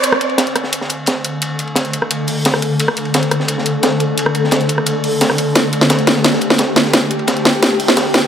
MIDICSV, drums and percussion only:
0, 0, Header, 1, 2, 480
1, 0, Start_track
1, 0, Tempo, 344828
1, 54, Time_signature, 4, 2, 24, 8
1, 11515, End_track
2, 0, Start_track
2, 0, Title_t, "Drums"
2, 43, Note_on_c, 9, 51, 87
2, 53, Note_on_c, 9, 42, 93
2, 174, Note_on_c, 9, 37, 58
2, 182, Note_off_c, 9, 51, 0
2, 192, Note_off_c, 9, 42, 0
2, 290, Note_on_c, 9, 51, 70
2, 293, Note_on_c, 9, 42, 67
2, 313, Note_off_c, 9, 37, 0
2, 409, Note_off_c, 9, 51, 0
2, 409, Note_on_c, 9, 51, 40
2, 432, Note_off_c, 9, 42, 0
2, 529, Note_on_c, 9, 38, 112
2, 533, Note_on_c, 9, 42, 98
2, 543, Note_off_c, 9, 51, 0
2, 543, Note_on_c, 9, 51, 84
2, 654, Note_off_c, 9, 42, 0
2, 654, Note_on_c, 9, 42, 35
2, 668, Note_off_c, 9, 38, 0
2, 682, Note_off_c, 9, 51, 0
2, 774, Note_off_c, 9, 42, 0
2, 774, Note_on_c, 9, 37, 36
2, 774, Note_on_c, 9, 42, 67
2, 778, Note_on_c, 9, 51, 64
2, 885, Note_on_c, 9, 38, 45
2, 913, Note_off_c, 9, 37, 0
2, 913, Note_off_c, 9, 42, 0
2, 917, Note_off_c, 9, 51, 0
2, 1008, Note_on_c, 9, 51, 85
2, 1014, Note_on_c, 9, 42, 98
2, 1024, Note_off_c, 9, 38, 0
2, 1133, Note_on_c, 9, 38, 50
2, 1147, Note_off_c, 9, 51, 0
2, 1153, Note_off_c, 9, 42, 0
2, 1244, Note_on_c, 9, 51, 63
2, 1253, Note_on_c, 9, 42, 72
2, 1273, Note_off_c, 9, 38, 0
2, 1383, Note_off_c, 9, 51, 0
2, 1393, Note_off_c, 9, 42, 0
2, 1478, Note_on_c, 9, 51, 75
2, 1493, Note_on_c, 9, 42, 92
2, 1499, Note_on_c, 9, 38, 100
2, 1617, Note_off_c, 9, 51, 0
2, 1632, Note_off_c, 9, 42, 0
2, 1638, Note_off_c, 9, 38, 0
2, 1733, Note_on_c, 9, 42, 60
2, 1733, Note_on_c, 9, 51, 66
2, 1873, Note_off_c, 9, 42, 0
2, 1873, Note_off_c, 9, 51, 0
2, 1973, Note_on_c, 9, 42, 86
2, 1978, Note_on_c, 9, 51, 85
2, 2113, Note_off_c, 9, 42, 0
2, 2117, Note_off_c, 9, 51, 0
2, 2214, Note_on_c, 9, 42, 62
2, 2223, Note_on_c, 9, 51, 60
2, 2330, Note_off_c, 9, 51, 0
2, 2330, Note_on_c, 9, 51, 35
2, 2353, Note_off_c, 9, 42, 0
2, 2444, Note_on_c, 9, 38, 110
2, 2453, Note_on_c, 9, 42, 98
2, 2458, Note_off_c, 9, 51, 0
2, 2458, Note_on_c, 9, 51, 91
2, 2573, Note_off_c, 9, 42, 0
2, 2573, Note_on_c, 9, 42, 34
2, 2583, Note_off_c, 9, 38, 0
2, 2597, Note_off_c, 9, 51, 0
2, 2692, Note_on_c, 9, 51, 70
2, 2693, Note_off_c, 9, 42, 0
2, 2693, Note_on_c, 9, 42, 64
2, 2813, Note_on_c, 9, 37, 36
2, 2831, Note_off_c, 9, 51, 0
2, 2832, Note_off_c, 9, 42, 0
2, 2933, Note_on_c, 9, 42, 93
2, 2933, Note_on_c, 9, 51, 83
2, 2952, Note_off_c, 9, 37, 0
2, 3072, Note_off_c, 9, 42, 0
2, 3073, Note_off_c, 9, 51, 0
2, 3166, Note_on_c, 9, 46, 81
2, 3172, Note_on_c, 9, 42, 70
2, 3305, Note_off_c, 9, 46, 0
2, 3311, Note_off_c, 9, 42, 0
2, 3412, Note_on_c, 9, 42, 94
2, 3419, Note_on_c, 9, 51, 82
2, 3423, Note_on_c, 9, 38, 115
2, 3532, Note_off_c, 9, 38, 0
2, 3532, Note_on_c, 9, 37, 36
2, 3532, Note_on_c, 9, 38, 43
2, 3551, Note_off_c, 9, 42, 0
2, 3559, Note_off_c, 9, 51, 0
2, 3649, Note_on_c, 9, 51, 58
2, 3652, Note_on_c, 9, 42, 64
2, 3671, Note_off_c, 9, 37, 0
2, 3671, Note_off_c, 9, 38, 0
2, 3788, Note_off_c, 9, 51, 0
2, 3791, Note_off_c, 9, 42, 0
2, 3891, Note_on_c, 9, 42, 80
2, 3896, Note_on_c, 9, 51, 88
2, 4012, Note_on_c, 9, 37, 59
2, 4030, Note_off_c, 9, 42, 0
2, 4036, Note_off_c, 9, 51, 0
2, 4132, Note_on_c, 9, 42, 60
2, 4140, Note_on_c, 9, 51, 68
2, 4151, Note_off_c, 9, 37, 0
2, 4248, Note_off_c, 9, 51, 0
2, 4248, Note_on_c, 9, 51, 45
2, 4271, Note_off_c, 9, 42, 0
2, 4372, Note_on_c, 9, 42, 93
2, 4373, Note_off_c, 9, 51, 0
2, 4373, Note_on_c, 9, 51, 97
2, 4381, Note_on_c, 9, 38, 119
2, 4493, Note_off_c, 9, 42, 0
2, 4493, Note_on_c, 9, 42, 35
2, 4512, Note_off_c, 9, 51, 0
2, 4521, Note_off_c, 9, 38, 0
2, 4609, Note_on_c, 9, 51, 68
2, 4613, Note_off_c, 9, 42, 0
2, 4613, Note_on_c, 9, 37, 35
2, 4613, Note_on_c, 9, 42, 65
2, 4731, Note_on_c, 9, 38, 46
2, 4748, Note_off_c, 9, 51, 0
2, 4752, Note_off_c, 9, 37, 0
2, 4752, Note_off_c, 9, 42, 0
2, 4845, Note_on_c, 9, 51, 92
2, 4852, Note_on_c, 9, 42, 91
2, 4870, Note_off_c, 9, 38, 0
2, 4984, Note_off_c, 9, 51, 0
2, 4986, Note_on_c, 9, 38, 45
2, 4991, Note_off_c, 9, 42, 0
2, 5093, Note_on_c, 9, 42, 68
2, 5098, Note_on_c, 9, 51, 64
2, 5125, Note_off_c, 9, 38, 0
2, 5232, Note_off_c, 9, 42, 0
2, 5237, Note_off_c, 9, 51, 0
2, 5327, Note_on_c, 9, 51, 79
2, 5333, Note_on_c, 9, 42, 95
2, 5338, Note_on_c, 9, 38, 125
2, 5467, Note_off_c, 9, 51, 0
2, 5472, Note_off_c, 9, 42, 0
2, 5477, Note_off_c, 9, 38, 0
2, 5566, Note_on_c, 9, 51, 58
2, 5573, Note_on_c, 9, 42, 57
2, 5705, Note_off_c, 9, 51, 0
2, 5712, Note_off_c, 9, 42, 0
2, 5813, Note_on_c, 9, 42, 85
2, 5830, Note_on_c, 9, 51, 91
2, 5933, Note_on_c, 9, 37, 56
2, 5952, Note_off_c, 9, 42, 0
2, 5969, Note_off_c, 9, 51, 0
2, 6051, Note_on_c, 9, 51, 72
2, 6053, Note_on_c, 9, 42, 62
2, 6072, Note_off_c, 9, 37, 0
2, 6182, Note_on_c, 9, 38, 40
2, 6190, Note_off_c, 9, 51, 0
2, 6192, Note_off_c, 9, 42, 0
2, 6279, Note_on_c, 9, 51, 85
2, 6291, Note_off_c, 9, 38, 0
2, 6291, Note_on_c, 9, 38, 122
2, 6293, Note_on_c, 9, 42, 94
2, 6413, Note_off_c, 9, 42, 0
2, 6413, Note_on_c, 9, 42, 33
2, 6418, Note_off_c, 9, 51, 0
2, 6430, Note_off_c, 9, 38, 0
2, 6526, Note_on_c, 9, 51, 70
2, 6534, Note_off_c, 9, 42, 0
2, 6534, Note_on_c, 9, 42, 62
2, 6653, Note_on_c, 9, 37, 34
2, 6665, Note_off_c, 9, 51, 0
2, 6673, Note_off_c, 9, 42, 0
2, 6768, Note_on_c, 9, 51, 91
2, 6773, Note_on_c, 9, 42, 91
2, 6792, Note_off_c, 9, 37, 0
2, 6907, Note_off_c, 9, 51, 0
2, 6913, Note_off_c, 9, 42, 0
2, 7014, Note_on_c, 9, 42, 64
2, 7027, Note_on_c, 9, 46, 74
2, 7153, Note_off_c, 9, 42, 0
2, 7166, Note_off_c, 9, 46, 0
2, 7253, Note_on_c, 9, 42, 92
2, 7256, Note_on_c, 9, 38, 109
2, 7257, Note_on_c, 9, 51, 77
2, 7370, Note_off_c, 9, 38, 0
2, 7370, Note_on_c, 9, 38, 45
2, 7374, Note_on_c, 9, 37, 35
2, 7392, Note_off_c, 9, 42, 0
2, 7397, Note_off_c, 9, 51, 0
2, 7493, Note_on_c, 9, 42, 61
2, 7495, Note_on_c, 9, 51, 65
2, 7509, Note_off_c, 9, 38, 0
2, 7513, Note_off_c, 9, 37, 0
2, 7632, Note_off_c, 9, 42, 0
2, 7635, Note_off_c, 9, 51, 0
2, 7728, Note_on_c, 9, 51, 81
2, 7733, Note_on_c, 9, 38, 46
2, 7733, Note_on_c, 9, 42, 85
2, 7867, Note_off_c, 9, 51, 0
2, 7872, Note_off_c, 9, 38, 0
2, 7872, Note_off_c, 9, 42, 0
2, 7973, Note_on_c, 9, 42, 61
2, 7977, Note_on_c, 9, 51, 63
2, 8093, Note_on_c, 9, 38, 46
2, 8103, Note_off_c, 9, 51, 0
2, 8103, Note_on_c, 9, 51, 45
2, 8112, Note_off_c, 9, 42, 0
2, 8208, Note_off_c, 9, 51, 0
2, 8208, Note_on_c, 9, 51, 101
2, 8212, Note_on_c, 9, 42, 90
2, 8217, Note_off_c, 9, 38, 0
2, 8217, Note_on_c, 9, 38, 124
2, 8334, Note_off_c, 9, 42, 0
2, 8334, Note_on_c, 9, 42, 34
2, 8347, Note_off_c, 9, 51, 0
2, 8356, Note_off_c, 9, 38, 0
2, 8453, Note_off_c, 9, 42, 0
2, 8453, Note_on_c, 9, 38, 51
2, 8453, Note_on_c, 9, 42, 66
2, 8458, Note_on_c, 9, 51, 67
2, 8572, Note_off_c, 9, 38, 0
2, 8572, Note_on_c, 9, 38, 43
2, 8592, Note_off_c, 9, 42, 0
2, 8597, Note_off_c, 9, 51, 0
2, 8688, Note_on_c, 9, 51, 88
2, 8692, Note_off_c, 9, 38, 0
2, 8692, Note_on_c, 9, 38, 52
2, 8692, Note_on_c, 9, 42, 87
2, 8810, Note_off_c, 9, 38, 0
2, 8810, Note_on_c, 9, 38, 54
2, 8827, Note_off_c, 9, 51, 0
2, 8832, Note_off_c, 9, 42, 0
2, 8923, Note_on_c, 9, 51, 69
2, 8932, Note_on_c, 9, 42, 68
2, 8949, Note_off_c, 9, 38, 0
2, 9053, Note_on_c, 9, 38, 47
2, 9062, Note_off_c, 9, 51, 0
2, 9072, Note_off_c, 9, 42, 0
2, 9161, Note_on_c, 9, 51, 81
2, 9173, Note_on_c, 9, 42, 91
2, 9177, Note_off_c, 9, 38, 0
2, 9177, Note_on_c, 9, 38, 106
2, 9300, Note_off_c, 9, 51, 0
2, 9312, Note_off_c, 9, 42, 0
2, 9316, Note_off_c, 9, 38, 0
2, 9413, Note_on_c, 9, 38, 53
2, 9413, Note_on_c, 9, 42, 59
2, 9418, Note_on_c, 9, 51, 61
2, 9541, Note_off_c, 9, 38, 0
2, 9541, Note_on_c, 9, 38, 49
2, 9552, Note_off_c, 9, 42, 0
2, 9557, Note_off_c, 9, 51, 0
2, 9653, Note_off_c, 9, 38, 0
2, 9653, Note_on_c, 9, 38, 58
2, 9653, Note_on_c, 9, 42, 87
2, 9654, Note_on_c, 9, 51, 80
2, 9792, Note_off_c, 9, 38, 0
2, 9792, Note_off_c, 9, 42, 0
2, 9793, Note_off_c, 9, 51, 0
2, 9890, Note_on_c, 9, 51, 60
2, 9894, Note_on_c, 9, 42, 63
2, 10010, Note_off_c, 9, 51, 0
2, 10010, Note_on_c, 9, 51, 40
2, 10033, Note_off_c, 9, 42, 0
2, 10126, Note_off_c, 9, 51, 0
2, 10126, Note_on_c, 9, 51, 98
2, 10133, Note_on_c, 9, 42, 94
2, 10134, Note_on_c, 9, 38, 110
2, 10255, Note_off_c, 9, 42, 0
2, 10255, Note_on_c, 9, 42, 36
2, 10265, Note_off_c, 9, 51, 0
2, 10273, Note_off_c, 9, 38, 0
2, 10373, Note_on_c, 9, 51, 62
2, 10375, Note_off_c, 9, 42, 0
2, 10375, Note_on_c, 9, 38, 62
2, 10375, Note_on_c, 9, 42, 66
2, 10512, Note_off_c, 9, 51, 0
2, 10514, Note_off_c, 9, 38, 0
2, 10514, Note_off_c, 9, 42, 0
2, 10615, Note_on_c, 9, 38, 64
2, 10615, Note_on_c, 9, 42, 94
2, 10615, Note_on_c, 9, 51, 83
2, 10754, Note_off_c, 9, 38, 0
2, 10754, Note_off_c, 9, 42, 0
2, 10754, Note_off_c, 9, 51, 0
2, 10854, Note_on_c, 9, 42, 71
2, 10854, Note_on_c, 9, 46, 70
2, 10974, Note_on_c, 9, 38, 59
2, 10993, Note_off_c, 9, 46, 0
2, 10994, Note_off_c, 9, 42, 0
2, 11092, Note_on_c, 9, 51, 88
2, 11093, Note_on_c, 9, 42, 92
2, 11095, Note_off_c, 9, 38, 0
2, 11095, Note_on_c, 9, 38, 118
2, 11209, Note_off_c, 9, 38, 0
2, 11209, Note_on_c, 9, 38, 49
2, 11231, Note_off_c, 9, 51, 0
2, 11232, Note_off_c, 9, 42, 0
2, 11333, Note_off_c, 9, 38, 0
2, 11333, Note_on_c, 9, 38, 66
2, 11333, Note_on_c, 9, 42, 65
2, 11344, Note_on_c, 9, 51, 67
2, 11473, Note_off_c, 9, 38, 0
2, 11473, Note_off_c, 9, 42, 0
2, 11483, Note_off_c, 9, 51, 0
2, 11515, End_track
0, 0, End_of_file